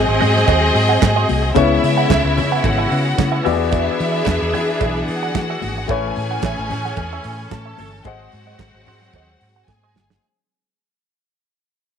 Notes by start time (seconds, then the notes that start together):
Already playing: F#3 G#3 C4 G#4 C5 D#5 F#5
0.08 G#1, muted clean electric guitar stroke
0.21 G#2 F#4 C5 F#5, open hi-hat, muted conga, low conga
0.35 muted clean electric guitar stroke, snare
0.47 D#2 F#4 C5 D#5, kick, closed hi-hat, cowbell, muted conga
0.61 muted clean electric guitar stroke
0.75 G#2, muted clean electric guitar stroke, open hi-hat
0.89 F#4 C5 F#5
1.02 G#2, muted clean electric guitar stroke, kick, snare, clap, closed hi-hat, cowbell, high conga
1.16 F#4 C5 D#5
1.29 C2, open hi-hat, high conga
1.43 muted clean electric guitar stroke
1.54 C#2 C#3 G#3 B3 C#4 E4 G#4 B4 C#5 E5, kick, closed hi-hat, cowbell, muted conga
1.83 C#3, muted clean electric guitar stroke, open hi-hat
1.97 G#4 B4 F#5
2.09 C#2 G#4 B4 E5, kick, snare, clap, closed hi-hat, cowbell, high conga
2.25 C#2, muted clean electric guitar stroke
2.37 C#3, muted clean electric guitar stroke, open hi-hat, muted conga, low conga
2.52 G#4 B4 F#5
2.64 G#1 F#4 F#5, muted clean electric guitar stroke, kick, closed hi-hat, cowbell, muted conga, low conga
2.78 G#4 B4 E5
2.90 C#3 G#4 B4 E5, open hi-hat
3.05 muted clean electric guitar stroke
3.18 C#3, muted clean electric guitar stroke, kick, snare, clap, closed hi-hat, cowbell, high conga
3.32 G#4 B4 E5
3.43 E2 E3 B3 D4 E4 F#4 G4 G#4 D5 E5, open hi-hat, high conga
3.53 G#4
3.59 muted clean electric guitar stroke
3.71 G#4 D5 E5, kick, closed hi-hat, cowbell, muted conga
4.00 E3, open hi-hat
4.12 G#4 D5 E5
4.25 E2, kick, snare, clap, closed hi-hat, cowbell, high conga
4.41 E2, muted clean electric guitar stroke
4.53 E3 G#4 D5 F#5, open hi-hat, low conga
4.69 muted clean electric guitar stroke
4.81 B1 G#4 D5 E5, kick, closed hi-hat, cowbell, muted conga
4.95 muted clean electric guitar stroke
5.08 E3 F#4 F#5, muted clean electric guitar stroke, open hi-hat
5.23 G#4 D5 F#5
5.34 E3, kick, snare, clap, closed hi-hat, cowbell, high conga
5.50 G#4 D5 E5
5.62 G#1, muted clean electric guitar stroke, open hi-hat, high conga
5.78 muted clean electric guitar stroke
5.88 A1 E3 A3 E4 G#4 A4 B4 C#5 E5 G#5, kick, closed hi-hat, cowbell, muted conga
5.92 C#4
6.16 A2, muted clean electric guitar stroke, open hi-hat
6.31 G#4 C#5 F#5
6.42 A1 G#4 C#5 E5, kick, snare, clap, closed hi-hat, cowbell, high conga
6.58 A1, muted clean electric guitar stroke
6.70 A2, muted clean electric guitar stroke, open hi-hat, low conga
6.85 G#4 C#5 F#5, snare
6.97 E2, muted clean electric guitar stroke, kick, closed hi-hat, cowbell, muted conga, low conga
7.13 G#4 C#5 E5
7.24 A2 G#4 C#5 E5, open hi-hat
7.39 muted clean electric guitar stroke
7.51 A2 A4 A5, muted clean electric guitar stroke, kick, snare, clap, closed hi-hat, cowbell, high conga
7.66 G#4 C#5 E5
7.78 G1 G#4 C#5 E5, open hi-hat, high conga
7.94 muted clean electric guitar stroke
8.05 G#1 F#3 G#3 F#4 G#4 C5 D#5 F#5, kick, closed hi-hat, cowbell, muted conga
8.09 C4
8.32 G#2, muted clean electric guitar stroke, open hi-hat
8.47 F#4 C5 D#5
8.59 G#1, kick, snare, clap, closed hi-hat, cowbell, high conga
8.74 G#1, muted clean electric guitar stroke
8.86 G#2 F#4 C5 F#5, open hi-hat, low conga
9.02 muted clean electric guitar stroke, snare
9.13 D#2 F#4 C5 D#5, kick, closed hi-hat, cowbell, muted conga
9.30 muted clean electric guitar stroke
9.41 G#2, muted clean electric guitar stroke, open hi-hat
9.56 F#4 C5 F#5
9.67 G#2 G#4 G#5, muted clean electric guitar stroke, kick, snare, cowbell, high conga
9.83 F#4 C5 D#5
9.95 G1, muted clean electric guitar stroke, snare, high conga
10.10 muted clean electric guitar stroke, snare